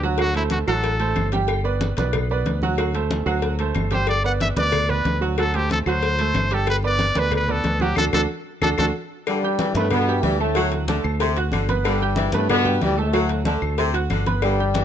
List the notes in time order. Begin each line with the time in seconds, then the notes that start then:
Already playing: D2
0.03 F#3 F#4 F#5
0.18 F#3 F#4 F#5, cowbell, high conga, claves
0.34 A3 E4 A4 C5, cowbell, high conga
0.50 F#4, cowbell, high conga
0.67 A1 F#3 F#4 A4 F#5, high conga, claves
0.84 cowbell, high conga
1.00 A3 A4 C5, cowbell, high conga
1.16 G1, cowbell, high conga, claves
1.32 G3 G4 G5, cowbell, high conga
1.48 cowbell, high conga, claves
1.64 B3 B4 D5, high conga
1.81 cowbell, high conga
1.97 B1 B3 B4 D5, cowbell, high conga
2.13 cowbell, high conga, low conga, claves
2.30 B3 B4 D5, high conga
2.46 D2, cowbell, high conga
2.62 F#3 F#4 F#5, high conga
2.78 F#3 F#4 F#5, cowbell, high conga, claves
2.94 A3 A4 C5, cowbell, high conga
3.11 cowbell, high conga
3.26 D2 F#3 F#4 F#5, high conga, claves
3.42 cowbell, high conga
3.59 A3 A4 C5, cowbell, high conga
3.75 G1, cowbell, high conga, claves
3.91 G3 G4 C5 G5, cowbell, high conga
4.07 D5, cowbell, high conga, claves
4.24 B3 B4 D5 F#5, high conga
4.40 E5, cowbell, high conga
4.56 D2 B3 B4 D5, cowbell, high conga
4.72 cowbell, high conga, low conga, claves
4.89 B3 B4 D5, high conga, low conga
5.05 D2, cowbell, high conga
5.21 F#3 F#4 F#5
5.38 F#3 F#4 A4 F#5, cowbell, high conga, claves
5.54 A3 G4 A4 C5, cowbell, high conga
5.70 A4, cowbell, high conga
5.86 D2 F#3 F#4 C5 F#5, high conga, claves
6.03 cowbell, high conga
6.19 A3 A4 C5, cowbell, high conga
6.34 G1, cowbell, high conga, claves
6.51 G3 G4 A4 G5, cowbell
6.67 B4, cowbell, high conga, claves
6.83 B3 B4 D5, high conga
6.99 cowbell, high conga
7.15 D2 B3 B4 D5, cowbell, high conga
7.31 cowbell, high conga, low conga, claves
7.35 B4
7.48 B3 A4 B4 D5, high conga, low conga
7.64 D2, cowbell, high conga
7.80 F#3 F#4 G4 F#5, high conga
7.96 D2 D4 F#4 A4, cowbell, high conga, claves
8.13 D2 D4 F#4 A4, cowbell, high conga, claves
8.62 D2 D4 F#4 A4, cowbell, high conga, claves
8.78 D2 D4 F#4 A4, cowbell, high conga, claves
9.27 G2 D3 G3, cowbell, high conga, claves
9.43 G4 G5 G6, high conga
9.58 E3, cowbell, high conga
9.74 G2 A2 A3 B3 B4 B5, cowbell, high conga
9.90 B2 D3 B3, cowbell, high conga, low conga, claves
10.08 G3 G4 G5, high conga
10.23 D2 G2 E3 G3, cowbell, high conga
10.40 A2 A3 A4 A5
10.55 F#3 F#4 F#5, cowbell, high conga, claves
10.72 cowbell, high conga
10.88 D3 A3 A4 A5, cowbell, high conga
11.04 D2, high conga, claves
11.20 C3 C4 C5 C6, cowbell, high conga
11.36 F#4 F#5 F#6, cowbell, high conga
11.51 G1 D3, cowbell, high conga, claves
11.69 B3 B4 B5, cowbell, high conga
11.85 G2 D3 G3, cowbell, high conga, claves
12.00 G4 G5 G6, high conga
12.16 E3, cowbell, high conga
12.32 G2 A2 A3 B3 B4 B5, cowbell, high conga
12.49 B2 D3 B3, cowbell, high conga, low conga, claves
12.65 G3 G4 G5, high conga, low conga
12.81 D2 G2 E3 G3, cowbell, high conga
12.98 A2 A3 A4 A5
13.13 F#3 F#4 F#5, cowbell, high conga, claves
13.29 cowbell, high conga
13.45 D3 A3 A4 A5, cowbell, high conga
13.62 D2, high conga, claves
13.78 C3 C4 C5 C6, cowbell, high conga
13.94 F#4 F#5 F#6, cowbell, high conga
14.10 G1 D3, cowbell, high conga, claves
14.27 B3 B4 B5, cowbell, high conga
14.42 G2 D3 G3, cowbell, high conga, claves
14.60 G4 G5 G6, high conga
14.74 E3, cowbell, high conga